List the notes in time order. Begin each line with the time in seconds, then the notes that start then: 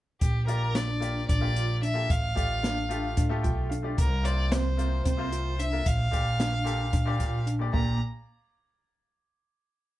0.21 A#1 G4, kick, closed hi-hat
0.47 A#3 F4 G4 A#4 D5, closed hi-hat
0.75 D4 D5, snare, closed hi-hat
1.00 A#3 F4 G4 D5, closed hi-hat
1.28 A#1 D4 D5, kick, closed hi-hat
1.41 A#3 F4 G4 D5
1.56 F4, closed hi-hat
1.82 D4 E5, closed hi-hat
1.94 A#3 F4 G4 A4
2.10 A1 F5, kick, closed hi-hat
2.35 A1 A3 F4 G4 D5, kick, closed hi-hat
2.63 D4, snare, closed hi-hat
2.89 A3 F4 G4 A4, closed hi-hat
3.17 A2 D4, kick, closed hi-hat
3.29 A3 F4 G4 A4
3.43 B1 F4 G5, kick, closed hi-hat
3.70 D4 F5, closed hi-hat
3.82 A3 F4 G4 D5
3.98 C2 A#4, kick, closed hi-hat
4.23 C3 A#3 F4 C5 D5, closed hi-hat
4.52 C4 C5, snare, closed hi-hat
4.77 C3 A#3 F4 C5, closed hi-hat
5.05 C2 C4 C5, kick, closed hi-hat
5.17 C3 A#3 F4 C5
5.32 F4, closed hi-hat
5.60 D4 E5, closed hi-hat
5.72 C3 A#3 F4 A#4
5.86 A#1 F5, kick, closed hi-hat
6.11 A#1 A#2 A#3 G4 D5, kick, closed hi-hat
6.40 D4, snare, closed hi-hat
6.64 A#2 A#3 G4 A4, closed hi-hat
6.93 A#2 D4, kick, closed hi-hat
7.05 A#2 A#3 G4 D5
7.20 A#1 F4, kick, snare, closed hi-hat
7.47 D4, closed hi-hat
7.59 A#2 A#3 G4 D5
7.73 A#1 A#2 A#3 G4 D5 A#5, kick